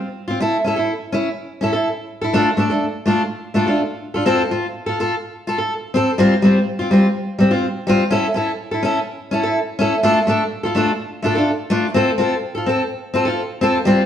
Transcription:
0.28 steel-string acoustic guitar C4 F4
0.40 steel-string acoustic guitar E4 A4, muted steel-string acoustic guitar stroke
0.64 steel-string acoustic guitar C#4 E4 A4
0.76 steel-string acoustic guitar E4 A4
1.12 steel-string acoustic guitar C#4 E4, muted steel-string acoustic guitar stroke
1.61 steel-string acoustic guitar C#4 E4 A4
1.73 steel-string acoustic guitar E4 A4
2.21 steel-string acoustic guitar E4 A4
2.33 steel-string acoustic guitar A3 D4 F4 A4
2.57 steel-string acoustic guitar A3 D4 A4, muted steel-string acoustic guitar stroke
2.70 steel-string acoustic guitar D4 A4, muted steel-string acoustic guitar stroke
3.06 steel-string acoustic guitar A3 D4 F4 A4
3.54 steel-string acoustic guitar A3 D4 F4 A4
3.66 steel-string acoustic guitar D4 F4 A4
4.14 steel-string acoustic guitar D4 F4 A4
4.26 steel-string acoustic guitar C4 F4 A4
4.51 steel-string acoustic guitar F4
4.86 steel-string acoustic guitar F4 A4
5.00 steel-string acoustic guitar F4 A4
5.47 steel-string acoustic guitar F4 A4
5.58 steel-string acoustic guitar A4
5.94 steel-string acoustic guitar C4 A4, muted steel-string acoustic guitar stroke
6.18 steel-string acoustic guitar G3 C4 F4
6.42 steel-string acoustic guitar G3 C4 F4
6.79 steel-string acoustic guitar C4 F4
6.91 steel-string acoustic guitar G3 C4 F4
7.39 steel-string acoustic guitar G3 C4
7.51 steel-string acoustic guitar C4 F4
7.87 steel-string acoustic guitar G3 C4 F4
8.11 steel-string acoustic guitar C#4 E4 A4
8.34 steel-string acoustic guitar C#4 E4 A4
8.71 steel-string acoustic guitar E4 A4
8.83 steel-string acoustic guitar C#4 E4 A4
9.31 steel-string acoustic guitar C#4 E4 A4
9.43 steel-string acoustic guitar E4 A4
9.79 steel-string acoustic guitar C#4 E4 A4
10.03 steel-string acoustic guitar A3 D4 F4 A4
10.27 steel-string acoustic guitar A3 D4 A4, muted steel-string acoustic guitar stroke
10.63 steel-string acoustic guitar F4 A4, muted steel-string acoustic guitar stroke
10.75 steel-string acoustic guitar A3 D4 F4 A4
11.22 steel-string acoustic guitar A3 D4 F4 A4
11.35 steel-string acoustic guitar D4 F4 A4
11.70 steel-string acoustic guitar A3 D4 F4
11.94 steel-string acoustic guitar C4 F4 A4
12.18 steel-string acoustic guitar C4 F4 A4
12.55 steel-string acoustic guitar F4 A4
12.66 steel-string acoustic guitar C4 A4
13.14 steel-string acoustic guitar C4 F4 A4
13.25 steel-string acoustic guitar F4 A4
13.61 steel-string acoustic guitar C4 F4 A4
13.85 steel-string acoustic guitar G3 C4 F4

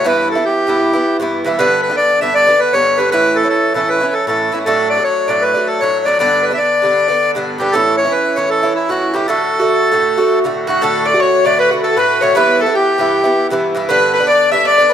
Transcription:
0.04 bouzouki G2 E3 B3 E4, accordion B4
0.31 accordion A4
0.35 bouzouki E3 B3 E4
0.45 accordion G4
0.67 bouzouki G2 E3 B3 E4
0.93 bouzouki E3 B3 E4
1.20 bouzouki G2 E3 B3 E4
1.44 bouzouki G2 E3 B3 E4
1.58 bouzouki G2 D3 B3 D4, accordion B4
1.82 accordion B4
1.90 bouzouki D3 B3 D4
1.97 accordion D5
2.21 bouzouki G2 D3 B3 D4, accordion E5
2.35 accordion D5
2.47 bouzouki D3 B3 D4
2.60 accordion B4
2.73 bouzouki G2 D3 B3 D4, accordion C#5
2.98 bouzouki G2 D3 B3 D4, accordion B4
3.11 bouzouki A2 E3 C#4 E4, accordion B4
3.36 accordion A4
3.43 bouzouki E3 C#4 E4
3.50 accordion A4
3.74 bouzouki A2 E3 C#4 E4, accordion A4
3.89 accordion B4
4.01 bouzouki E3 C#4 E4
4.13 accordion A4
4.27 bouzouki A2 E3 C#4 E4, accordion A4
4.52 bouzouki A2 E3 C#4 E4, accordion E4
4.66 bouzouki A2 F#3 A3 D4, accordion A4
4.90 accordion D5
4.97 bouzouki F#3 A3 D4
5.04 accordion C#5
5.28 bouzouki A2 F#3 A3 D4, accordion D5
5.42 accordion B4
5.54 bouzouki F#3 A3 D4
5.67 accordion A4
5.80 bouzouki A2 F#3 A3 D4, accordion C#5
6.05 bouzouki A2 F#3 A3 D4, accordion D5
6.19 bouzouki G2 D3 B3 D4, accordion D5
6.43 accordion B4
6.50 bouzouki D3 B3 D4, accordion E5
6.57 accordion D5
6.82 bouzouki G2 D3 B3 D4
7.08 bouzouki D3 B3 D4
7.35 bouzouki G2 D3 B3 D4
7.58 bouzouki G2 D3 B3 D4, accordion G4
7.72 bouzouki A2 E3 C#4 E4, accordion A4
7.98 accordion C#5
8.04 bouzouki E3 C#4 E4
8.11 accordion B4
8.36 bouzouki A2 E3 C#4 E4, accordion C#5
8.50 accordion A4
8.63 bouzouki E3 C#4 E4
8.75 accordion E4
8.89 bouzouki A2 E3 C#4 E4, accordion F#4
9.13 bouzouki A2 E3 C#4 E4, accordion G4
9.28 bouzouki A2 D3 A3 F#4, accordion A4
9.59 bouzouki D3 A3 F#4
9.92 bouzouki A2 D3 A3 F#4
10.18 bouzouki D3 A3 F#4
10.44 bouzouki A2 D3 A3 F#4
10.67 bouzouki A2 D3 A3 F#4, mandolin F#4, accordion F#4, fiddle F#4
10.81 bouzouki A2 D3 A3 F#4, mandolin A4, fiddle A4, accordion A4
11.05 mandolin D5, fiddle D5, accordion D5
11.14 bouzouki D3 A3 F#4
11.20 mandolin C#5, fiddle C#5, accordion C#5
11.44 bouzouki A2 D3 A3 F#4, fiddle D5, accordion D5
11.59 mandolin B4, accordion B4, fiddle B4
11.71 bouzouki D3 A3 F#4
11.82 fiddle A4, accordion A4, mandolin A4
11.96 bouzouki A2 D3 A3 F#4, fiddle B4, mandolin B4, accordion B4
12.21 bouzouki A2 D3 A3 F#4, fiddle C#5, accordion C#5, mandolin C#5
12.35 bouzouki G2 E3 B3 E4, fiddle B4, accordion B4, mandolin B4
12.59 fiddle A4, accordion A4, mandolin A4
12.66 bouzouki E3 B3 E4
12.73 fiddle G4, mandolin G4, accordion G4
12.98 bouzouki G2 E3 B3 E4
13.24 bouzouki E3 B3 E4
13.50 bouzouki G2 E3 B3 E4
13.75 bouzouki G2 E3 B3 E4
13.88 bouzouki G2 D3 B3 D4, fiddle B4, mandolin B4, accordion B4
14.13 fiddle B4, mandolin B4, accordion B4
14.20 bouzouki D3 B3 D4
14.27 mandolin D5, fiddle D5, accordion D5
14.51 bouzouki G2 D3 B3 D4, fiddle E5, mandolin E5, accordion E5
14.65 fiddle D5, mandolin D5, accordion D5
14.78 bouzouki D3 B3 D4
14.90 mandolin B4

